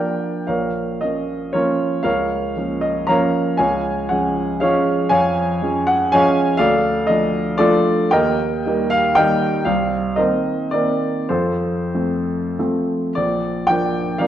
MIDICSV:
0, 0, Header, 1, 2, 480
1, 0, Start_track
1, 0, Key_signature, -5, "minor"
1, 0, Tempo, 531444
1, 446, Time_signature, 3, 2, 24, 8
1, 1395, Tempo, 514139
1, 4275, Tempo, 505476
1, 5715, Tempo, 472069
1, 6191, Key_signature, -2, "major"
1, 6675, Tempo, 522193
1, 8595, Tempo, 500000
1, 9555, Tempo, 564440
1, 10515, Tempo, 634249
1, 11475, Tempo, 581959
1, 11955, Tempo, 519031
1, 12985, End_track
2, 0, Start_track
2, 0, Title_t, "Grand piano"
2, 0, Program_c, 0, 0
2, 0, Note_on_c, 0, 53, 32
2, 0, Note_on_c, 0, 58, 33
2, 0, Note_on_c, 0, 62, 38
2, 0, Note_on_c, 0, 70, 55
2, 0, Note_on_c, 0, 74, 54
2, 0, Note_on_c, 0, 79, 66
2, 404, Note_off_c, 0, 70, 0
2, 405, Note_off_c, 0, 74, 0
2, 407, Note_off_c, 0, 53, 0
2, 410, Note_off_c, 0, 58, 0
2, 410, Note_off_c, 0, 62, 0
2, 427, Note_on_c, 0, 77, 59
2, 435, Note_off_c, 0, 79, 0
2, 435, Note_on_c, 0, 70, 51
2, 436, Note_on_c, 0, 73, 45
2, 440, Note_on_c, 0, 34, 47
2, 618, Control_c, 0, 64, 127
2, 886, Note_off_c, 0, 70, 0
2, 887, Note_off_c, 0, 73, 0
2, 908, Note_off_c, 0, 34, 0
2, 914, Note_on_c, 0, 75, 65
2, 916, Note_off_c, 0, 77, 0
2, 927, Note_on_c, 0, 53, 28
2, 930, Note_on_c, 0, 58, 33
2, 935, Note_on_c, 0, 61, 34
2, 1360, Note_off_c, 0, 53, 0
2, 1361, Note_off_c, 0, 58, 0
2, 1364, Note_off_c, 0, 61, 0
2, 1382, Note_on_c, 0, 73, 70
2, 1390, Note_off_c, 0, 75, 0
2, 1390, Note_on_c, 0, 70, 53
2, 1394, Note_on_c, 0, 65, 54
2, 1396, Note_on_c, 0, 53, 47
2, 1403, Note_on_c, 0, 58, 42
2, 1405, Control_c, 0, 64, 0
2, 1409, Note_on_c, 0, 61, 49
2, 1823, Note_off_c, 0, 53, 0
2, 1824, Note_off_c, 0, 70, 0
2, 1826, Note_off_c, 0, 58, 0
2, 1826, Note_off_c, 0, 65, 0
2, 1829, Note_off_c, 0, 61, 0
2, 1846, Note_on_c, 0, 77, 75
2, 1848, Note_off_c, 0, 73, 0
2, 1858, Note_on_c, 0, 70, 60
2, 1860, Note_on_c, 0, 37, 50
2, 1862, Note_on_c, 0, 73, 62
2, 2057, Control_c, 0, 64, 127
2, 2328, Note_off_c, 0, 37, 0
2, 2347, Note_on_c, 0, 53, 35
2, 2353, Note_on_c, 0, 58, 34
2, 2356, Note_on_c, 0, 61, 32
2, 2555, Note_off_c, 0, 70, 0
2, 2557, Note_off_c, 0, 73, 0
2, 2577, Note_on_c, 0, 75, 69
2, 2586, Note_off_c, 0, 77, 0
2, 2801, Note_off_c, 0, 53, 0
2, 2804, Note_off_c, 0, 58, 0
2, 2805, Note_off_c, 0, 61, 0
2, 2816, Note_on_c, 0, 82, 82
2, 2828, Note_off_c, 0, 75, 0
2, 2831, Note_on_c, 0, 77, 67
2, 2833, Note_on_c, 0, 73, 63
2, 2837, Note_on_c, 0, 53, 52
2, 2839, Note_on_c, 0, 58, 51
2, 2844, Control_c, 0, 64, 0
2, 2845, Note_on_c, 0, 61, 55
2, 3272, Note_off_c, 0, 53, 0
2, 3273, Note_off_c, 0, 58, 0
2, 3274, Note_off_c, 0, 73, 0
2, 3274, Note_off_c, 0, 77, 0
2, 3276, Note_off_c, 0, 61, 0
2, 3288, Note_on_c, 0, 80, 78
2, 3299, Note_off_c, 0, 82, 0
2, 3300, Note_on_c, 0, 73, 61
2, 3300, Note_on_c, 0, 77, 60
2, 3308, Note_on_c, 0, 37, 54
2, 3463, Control_c, 0, 64, 127
2, 3753, Note_off_c, 0, 73, 0
2, 3754, Note_off_c, 0, 77, 0
2, 3771, Note_on_c, 0, 78, 68
2, 3777, Note_off_c, 0, 37, 0
2, 3782, Note_off_c, 0, 80, 0
2, 3790, Note_on_c, 0, 53, 36
2, 3793, Note_on_c, 0, 56, 39
2, 3795, Note_on_c, 0, 61, 37
2, 4237, Note_off_c, 0, 53, 0
2, 4238, Note_off_c, 0, 56, 0
2, 4239, Note_off_c, 0, 61, 0
2, 4248, Note_on_c, 0, 77, 79
2, 4257, Note_on_c, 0, 68, 69
2, 4258, Note_on_c, 0, 73, 65
2, 4265, Note_off_c, 0, 78, 0
2, 4266, Note_on_c, 0, 53, 50
2, 4270, Note_on_c, 0, 56, 54
2, 4273, Note_on_c, 0, 61, 57
2, 4287, Control_c, 0, 64, 0
2, 4702, Note_off_c, 0, 53, 0
2, 4702, Note_off_c, 0, 68, 0
2, 4702, Note_off_c, 0, 73, 0
2, 4704, Note_off_c, 0, 56, 0
2, 4706, Note_off_c, 0, 61, 0
2, 4709, Note_off_c, 0, 77, 0
2, 4714, Note_on_c, 0, 80, 88
2, 4721, Note_on_c, 0, 73, 69
2, 4723, Note_on_c, 0, 77, 68
2, 4732, Note_on_c, 0, 41, 61
2, 4906, Control_c, 0, 64, 127
2, 5206, Note_off_c, 0, 41, 0
2, 5217, Note_on_c, 0, 53, 42
2, 5218, Note_on_c, 0, 56, 41
2, 5226, Note_on_c, 0, 61, 46
2, 5429, Note_off_c, 0, 73, 0
2, 5429, Note_off_c, 0, 77, 0
2, 5450, Note_on_c, 0, 78, 96
2, 5463, Note_off_c, 0, 80, 0
2, 5673, Note_off_c, 0, 53, 0
2, 5673, Note_off_c, 0, 56, 0
2, 5677, Note_off_c, 0, 61, 0
2, 5691, Note_on_c, 0, 80, 98
2, 5700, Note_on_c, 0, 77, 74
2, 5701, Note_on_c, 0, 73, 72
2, 5702, Note_off_c, 0, 78, 0
2, 5706, Note_on_c, 0, 53, 61
2, 5709, Note_on_c, 0, 56, 61
2, 5714, Note_on_c, 0, 61, 63
2, 5730, Control_c, 0, 64, 0
2, 6136, Note_off_c, 0, 77, 0
2, 6145, Note_off_c, 0, 53, 0
2, 6147, Note_off_c, 0, 56, 0
2, 6149, Note_off_c, 0, 61, 0
2, 6149, Note_off_c, 0, 73, 0
2, 6151, Note_on_c, 0, 77, 101
2, 6167, Note_on_c, 0, 74, 77
2, 6170, Note_on_c, 0, 69, 70
2, 6172, Note_on_c, 0, 38, 62
2, 6178, Note_off_c, 0, 80, 0
2, 6346, Control_c, 0, 64, 127
2, 6628, Note_off_c, 0, 74, 0
2, 6630, Note_off_c, 0, 69, 0
2, 6650, Note_on_c, 0, 75, 81
2, 6651, Note_off_c, 0, 38, 0
2, 6655, Note_off_c, 0, 77, 0
2, 6673, Note_on_c, 0, 57, 43
2, 6674, Note_on_c, 0, 53, 42
2, 6679, Note_on_c, 0, 62, 45
2, 7110, Note_off_c, 0, 53, 0
2, 7110, Note_off_c, 0, 57, 0
2, 7112, Note_off_c, 0, 62, 0
2, 7120, Note_on_c, 0, 74, 97
2, 7129, Note_on_c, 0, 65, 74
2, 7131, Note_on_c, 0, 69, 72
2, 7136, Note_off_c, 0, 75, 0
2, 7138, Note_on_c, 0, 57, 61
2, 7140, Note_on_c, 0, 53, 57
2, 7144, Note_on_c, 0, 62, 68
2, 7158, Control_c, 0, 64, 0
2, 7593, Note_off_c, 0, 65, 0
2, 7594, Note_off_c, 0, 69, 0
2, 7596, Note_off_c, 0, 57, 0
2, 7597, Note_off_c, 0, 53, 0
2, 7599, Note_off_c, 0, 62, 0
2, 7612, Note_on_c, 0, 79, 89
2, 7624, Note_off_c, 0, 74, 0
2, 7624, Note_on_c, 0, 70, 74
2, 7626, Note_on_c, 0, 75, 75
2, 7631, Note_on_c, 0, 39, 59
2, 7816, Control_c, 0, 64, 127
2, 8100, Note_off_c, 0, 39, 0
2, 8120, Note_on_c, 0, 51, 48
2, 8123, Note_on_c, 0, 55, 46
2, 8126, Note_on_c, 0, 58, 45
2, 8319, Note_off_c, 0, 70, 0
2, 8320, Note_off_c, 0, 75, 0
2, 8341, Note_on_c, 0, 77, 99
2, 8349, Note_off_c, 0, 79, 0
2, 8559, Note_off_c, 0, 51, 0
2, 8561, Note_off_c, 0, 55, 0
2, 8562, Note_off_c, 0, 58, 0
2, 8574, Note_on_c, 0, 79, 97
2, 8584, Note_off_c, 0, 77, 0
2, 8584, Note_on_c, 0, 70, 71
2, 8584, Note_on_c, 0, 75, 66
2, 8592, Note_on_c, 0, 51, 64
2, 8595, Note_on_c, 0, 55, 61
2, 8597, Note_on_c, 0, 58, 65
2, 8606, Control_c, 0, 64, 0
2, 9024, Note_off_c, 0, 51, 0
2, 9024, Note_off_c, 0, 70, 0
2, 9025, Note_off_c, 0, 55, 0
2, 9025, Note_off_c, 0, 75, 0
2, 9026, Note_off_c, 0, 58, 0
2, 9046, Note_on_c, 0, 77, 80
2, 9052, Note_off_c, 0, 79, 0
2, 9059, Note_on_c, 0, 36, 61
2, 9273, Control_c, 0, 64, 127
2, 9535, Note_on_c, 0, 75, 74
2, 9538, Note_off_c, 0, 36, 0
2, 9546, Note_off_c, 0, 77, 0
2, 9548, Note_on_c, 0, 70, 55
2, 9548, Note_on_c, 0, 72, 47
2, 9552, Note_on_c, 0, 51, 44
2, 9553, Note_on_c, 0, 58, 37
2, 9560, Note_on_c, 0, 60, 45
2, 9562, Control_c, 0, 64, 0
2, 9985, Note_off_c, 0, 70, 0
2, 9985, Note_off_c, 0, 72, 0
2, 9986, Note_off_c, 0, 51, 0
2, 9986, Note_off_c, 0, 58, 0
2, 9990, Note_off_c, 0, 60, 0
2, 10006, Note_on_c, 0, 74, 83
2, 10012, Note_off_c, 0, 75, 0
2, 10024, Note_on_c, 0, 51, 50
2, 10025, Note_on_c, 0, 58, 52
2, 10027, Note_on_c, 0, 60, 50
2, 10482, Note_off_c, 0, 51, 0
2, 10482, Note_off_c, 0, 58, 0
2, 10483, Note_off_c, 0, 60, 0
2, 10500, Note_on_c, 0, 72, 65
2, 10507, Note_off_c, 0, 74, 0
2, 10511, Note_on_c, 0, 69, 51
2, 10512, Note_on_c, 0, 41, 53
2, 10512, Note_on_c, 0, 65, 50
2, 10664, Control_c, 0, 64, 127
2, 10976, Note_off_c, 0, 41, 0
2, 10996, Note_on_c, 0, 53, 33
2, 10999, Note_on_c, 0, 57, 35
2, 11002, Note_on_c, 0, 60, 37
2, 11443, Note_off_c, 0, 65, 0
2, 11443, Note_off_c, 0, 69, 0
2, 11447, Note_off_c, 0, 53, 0
2, 11448, Note_off_c, 0, 57, 0
2, 11450, Note_off_c, 0, 60, 0
2, 11468, Note_off_c, 0, 72, 0
2, 11487, Control_c, 0, 64, 0
2, 11487, Note_on_c, 0, 53, 46
2, 11487, Note_on_c, 0, 57, 48
2, 11491, Note_on_c, 0, 60, 50
2, 11927, Note_off_c, 0, 53, 0
2, 11928, Note_off_c, 0, 57, 0
2, 11929, Note_off_c, 0, 60, 0
2, 11951, Note_on_c, 0, 74, 85
2, 11966, Note_on_c, 0, 34, 60
2, 12156, Control_c, 0, 64, 127
2, 12426, Note_on_c, 0, 79, 91
2, 12429, Note_off_c, 0, 34, 0
2, 12436, Note_off_c, 0, 74, 0
2, 12445, Note_on_c, 0, 53, 47
2, 12452, Note_on_c, 0, 58, 46
2, 12452, Note_on_c, 0, 62, 52
2, 12885, Note_off_c, 0, 53, 0
2, 12888, Note_off_c, 0, 58, 0
2, 12888, Note_off_c, 0, 62, 0
2, 12904, Note_on_c, 0, 77, 77
2, 12913, Note_off_c, 0, 79, 0
2, 12916, Note_on_c, 0, 53, 63
2, 12924, Note_on_c, 0, 58, 64
2, 12927, Control_c, 0, 64, 0
2, 12928, Note_on_c, 0, 62, 68
2, 12985, Note_off_c, 0, 53, 0
2, 12985, Note_off_c, 0, 58, 0
2, 12985, Note_off_c, 0, 62, 0
2, 12985, Note_off_c, 0, 77, 0
2, 12985, End_track
0, 0, End_of_file